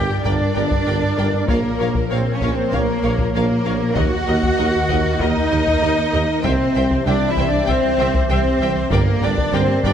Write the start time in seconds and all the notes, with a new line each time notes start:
Already playing: G3 D4 G4 A#4 D5 G5
0.10 G2
0.24 G1 G2 D4 A#4 D5 G5, taiko
0.41 G2
0.55 G1 G2 A#4 D5 G5
0.71 G2, taiko
0.87 G1 G2 A#4 D5 G5
1.03 G2
1.18 G1 G2 A#4 D5 G5
1.34 G2
1.48 A#1 A#2 F3 A#3 A#4 C#5 F5, taiko
1.65 A#2
1.80 A#1 A#2 A#4 C#5 F5
1.95 A#2, taiko
2.11 A#1 A#2 C4 A#4 C5 C#5 F5
2.27 A#2
2.32 C#4 C#5
2.41 A#1 A#2 A#4 C#5 F5, taiko
2.53 C4 C5
2.58 A#2
2.71 A#1 A#2 A#3 A#4 C#5 F5, taiko
2.89 A#2
3.03 A#1 A#2 A#4 C#5 F5
3.18 A#2, taiko
3.34 A#1 A#2 A#3 A#4 C#5 F5
3.51 A#2
3.65 A#1 A#2 A#4 C#5 F5
3.83 A#2
3.95 D#2 D#3 F#4 A#4 D#5 F#5, taiko
4.14 D#2
4.27 D#2 A#4 D#5
4.43 D#2, taiko
4.57 D#2 A#4 D#5
4.76 D#2
4.89 D#2 A#4 D#5, taiko
5.06 D#2
5.20 D#2 D#4 A#4 D#5, taiko
5.37 D#2
5.51 D#2 A#4 D#5
5.66 D#2, taiko
5.81 D#2 A#4 D#5
5.98 D#2
6.13 D#2 A#4 D#5
6.29 D#2
6.44 C2 E3 C4 G4 C5 E5 G5, taiko
6.59 C2
6.75 C2 C5 E5 G5
6.90 C2, taiko
7.06 C2 D4 C5 D5 E5 G5
7.22 C2
7.27 E4 E5
7.37 C2 C5 E5 G5, taiko
7.48 D4 D5
7.52 C2
7.67 C2 C4 C5 E5 G5, taiko
7.83 C2
7.98 C2 C5 E5 G5
8.14 C2, taiko
8.29 C2 C4 C5 E5 G5
8.45 C2
8.59 C2 C5 E5 G5
8.76 C2
8.91 G1 G2 D3 A#3 A#4 D5 G5, taiko
9.06 G2
9.21 G1 G2 D4 A#4 D5 G5
9.37 G2, taiko
9.52 G1 G2 C4 A#4 C5 D5 G5
9.68 G2
9.83 G1 G2 D4 A#4 D5 G5, taiko